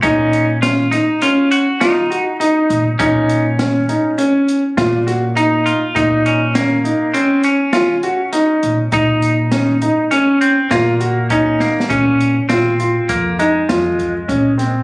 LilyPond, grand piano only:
\new Staff \with { instrumentName = "Grand piano" } { \time 5/4 \key ges \lydian \tempo 4 = 101 ees'4 des'8 ees'8 des'4 f'8 ges'8 ees'4 | ees'4 des'8 ees'8 des'4 f'8 ges'8 ees'4 | ees'4 des'8 ees'8 des'4 f'8 ges'8 ees'4 | ees'4 des'8 ees'8 des'4 f'8 ges'8 ees'4 |
des'4 f'8 f'4 ees'8 f'4 des'8 c'8 | }